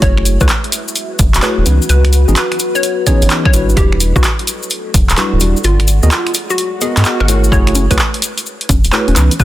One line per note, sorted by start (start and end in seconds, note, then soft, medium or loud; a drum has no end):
0.00 0.38 F#1 loud
0.00 0.37 A3 medium
0.00 0.37 E4 medium
0.00 0.37 F#4 medium
0.00 4.53 F#4 medium
0.00 0.37 G#4 medium
0.00 0.69 G#4 medium
0.00 0.37 C#5 medium
0.00 0.69 C#5 medium
0.00 0.23 C#5 loud
0.00 0.69 F#5 medium
0.00 kick loud
0.00 closed hi-hat medium
0.00 cabasa soft
0.17 finger snap medium
0.22 4.54 B4 medium
0.22 open hi-hat loud
0.22 cabasa medium
0.40 0.48 C#2 medium
0.40 0.46 A3 medium
0.40 0.46 E4 medium
0.40 0.46 F#4 medium
0.40 0.46 G#4 medium
0.40 0.51 B4 medium
0.40 0.46 C#5 medium
0.40 kick loud
0.40 cabasa medium
0.49 clap loud
0.49 closed hi-hat medium
0.49 cabasa soft
0.64 closed hi-hat soft
0.72 open hi-hat loud
0.72 cabasa medium
0.88 cabasa soft
0.95 closed hi-hat medium
0.95 cabasa soft
1.19 1.33 F#1 medium
1.19 kick loud
1.19 open hi-hat loud
1.19 cabasa medium
1.34 1.42 E1 medium
1.34 clap medium
1.34 closed hi-hat medium
1.34 cabasa soft
1.42 1.64 A3 medium
1.42 1.64 E4 medium
1.42 1.64 F#4 medium
1.42 1.64 G#4 medium
1.42 1.70 B4 medium
1.42 1.64 C#5 medium
1.42 clap loud
1.42 closed hi-hat medium
1.42 cabasa soft
1.58 1.65 E1 loud
1.66 1.80 C#2 loud
1.66 1.82 E3 medium
1.66 1.82 B3 medium
1.66 1.82 C#4 medium
1.66 1.82 D#4 medium
1.66 1.82 B4 medium
1.66 open hi-hat loud
1.66 cabasa medium
1.82 cabasa soft
1.89 2.25 C#2 loud
1.89 2.17 B4 medium
1.89 closed hi-hat medium
1.89 cabasa soft
2.05 finger snap medium
2.05 open hi-hat medium
2.13 open hi-hat loud
2.13 cabasa medium
2.28 2.35 G#1 medium
2.28 2.33 E3 medium
2.28 2.33 B3 medium
2.28 2.33 C#4 medium
2.28 2.33 D#4 medium
2.28 2.33 G#4 medium
2.28 cabasa medium
2.36 2.57 B4 medium
2.36 clap loud
2.36 closed hi-hat medium
2.36 cabasa soft
2.52 finger snap soft
2.52 closed hi-hat soft
2.60 open hi-hat loud
2.60 cabasa medium
2.75 2.94 C#5 medium
2.75 cabasa medium
2.83 closed hi-hat medium
2.83 cabasa soft
3.06 3.52 E3 medium
3.06 3.52 B3 medium
3.06 3.52 C#4 medium
3.06 3.52 D#4 medium
3.06 3.52 G#4 loud
3.06 3.28 C#5 loud
3.06 kick medium
3.06 open hi-hat loud
3.06 cabasa medium
3.22 3.29 G#1 medium
3.22 closed hi-hat medium
3.22 cabasa soft
3.30 clap loud
3.30 closed hi-hat medium
3.30 cabasa soft
3.45 3.64 C#5 medium
3.45 finger snap medium
3.45 kick loud
3.53 3.75 G#1 loud
3.53 4.12 G3 medium
3.53 4.12 D4 medium
3.53 4.12 E4 medium
3.53 4.12 F#4 medium
3.53 4.12 B4 medium
3.53 open hi-hat loud
3.53 cabasa medium
3.69 cabasa soft
3.77 4.13 E1 loud
3.77 3.98 G4 loud
3.77 5.65 A4 medium
3.77 kick loud
3.77 closed hi-hat medium
3.77 cabasa soft
3.92 finger snap medium
4.00 open hi-hat loud
4.00 cabasa medium
4.16 4.23 B1 medium
4.16 4.21 G3 medium
4.16 4.21 D4 medium
4.16 4.21 E4 medium
4.16 4.26 F#4 medium
4.16 4.21 F#4 medium
4.16 4.21 B4 loud
4.16 kick loud
4.16 cabasa soft
4.23 7.52 F#5 medium
4.23 clap loud
4.23 closed hi-hat medium
4.23 cabasa soft
4.39 closed hi-hat soft
4.47 open hi-hat loud
4.47 cabasa medium
4.63 cabasa medium
4.70 closed hi-hat medium
4.70 cabasa soft
4.94 5.08 E1 medium
4.94 kick loud
4.94 open hi-hat loud
4.94 cabasa medium
5.09 5.17 D1 medium
5.09 clap medium
5.09 closed hi-hat medium
5.09 cabasa soft
5.17 5.39 G3 medium
5.17 5.39 D4 medium
5.17 5.39 E4 medium
5.17 5.39 F#4 medium
5.17 5.45 F#4 medium
5.17 5.39 B4 medium
5.17 clap loud
5.17 closed hi-hat medium
5.17 cabasa soft
5.33 5.40 D1 medium
5.40 5.55 E1 loud
5.40 5.57 G3 medium
5.40 5.57 D4 medium
5.40 5.57 E4 medium
5.40 5.57 F#4 medium
5.40 5.57 D5 medium
5.40 open hi-hat loud
5.40 cabasa medium
5.56 cabasa soft
5.64 6.00 G#1 medium
5.64 5.92 F4 loud
5.64 7.52 G#4 loud
5.64 closed hi-hat medium
5.64 cabasa soft
5.80 finger snap medium
5.80 open hi-hat medium
5.88 open hi-hat loud
5.88 cabasa medium
6.03 6.10 D#2 medium
6.03 6.08 B3 medium
6.03 6.08 F#4 medium
6.03 6.08 G#4 medium
6.03 6.08 A#4 medium
6.03 6.08 D#5 medium
6.03 cabasa soft
6.11 6.32 F4 medium
6.11 clap loud
6.11 closed hi-hat medium
6.11 cabasa soft
6.27 finger snap soft
6.27 closed hi-hat soft
6.34 open hi-hat loud
6.34 cabasa medium
6.50 6.69 F#4 medium
6.50 cabasa medium
6.58 closed hi-hat medium
6.58 swell medium
6.58 cabasa soft
6.81 7.27 B3 medium
6.81 7.27 F#4 medium
6.81 7.27 G#4 medium
6.81 7.03 G#4 medium
6.81 7.27 A#4 medium
6.81 7.27 D#5 medium
6.81 open hi-hat loud
6.81 cabasa medium
6.97 7.04 G#2 medium
6.97 clap medium
6.97 closed hi-hat medium
6.97 cabasa soft
7.04 clap loud
7.04 closed hi-hat medium
7.04 cabasa soft
7.20 7.50 G#1 medium
7.20 7.39 A#4 loud
7.20 finger snap medium
7.28 7.51 A3 medium
7.28 7.51 E4 medium
7.28 7.51 F#4 medium
7.28 7.51 G#4 medium
7.28 7.51 C#5 medium
7.28 open hi-hat loud
7.28 cabasa medium
7.44 cabasa medium
7.52 7.88 F#1 loud
7.52 7.85 A3 loud
7.52 7.85 E4 medium
7.52 7.85 F#4 medium
7.52 7.85 G#4 loud
7.52 7.73 C#5 loud
7.52 7.85 C#5 loud
7.52 kick loud
7.52 cabasa soft
7.67 finger snap medium
7.67 closed hi-hat medium
7.75 open hi-hat loud
7.75 high conga medium
7.75 cabasa medium
7.91 7.98 C#2 medium
7.91 7.96 A3 medium
7.91 7.96 E4 medium
7.91 7.96 F#4 medium
7.91 7.96 G#4 medium
7.91 8.01 B4 medium
7.91 7.96 C#5 loud
7.91 kick medium
7.91 closed hi-hat medium
7.91 cabasa medium
7.99 clap loud
7.99 cabasa soft
8.14 closed hi-hat soft
8.22 open hi-hat loud
8.22 cabasa loud
8.38 closed hi-hat medium
8.38 cabasa medium
8.46 cabasa soft
8.61 closed hi-hat soft
8.69 8.83 F#1 medium
8.69 kick loud
8.69 open hi-hat loud
8.69 high conga medium
8.69 cabasa loud
8.84 8.92 E1 medium
8.84 closed hi-hat medium
8.84 cabasa soft
8.92 9.14 A3 medium
8.92 9.14 E4 medium
8.92 9.14 F#4 medium
8.92 9.14 G#4 medium
8.92 9.20 B4 loud
8.92 9.14 C#5 medium
8.92 clap loud
8.92 cabasa soft
9.08 9.15 E1 loud
9.08 closed hi-hat soft
9.08 high conga medium
9.16 9.30 C#2 medium
9.16 9.32 E3 medium
9.16 9.32 B3 medium
9.16 9.32 C#4 medium
9.16 9.32 D#4 medium
9.16 9.32 B4 medium
9.16 clap medium
9.16 open hi-hat loud
9.16 cabasa loud
9.31 closed hi-hat medium
9.31 cabasa medium
9.40 9.44 C#2 loud
9.40 9.44 B4 loud
9.40 kick loud
9.40 cabasa soft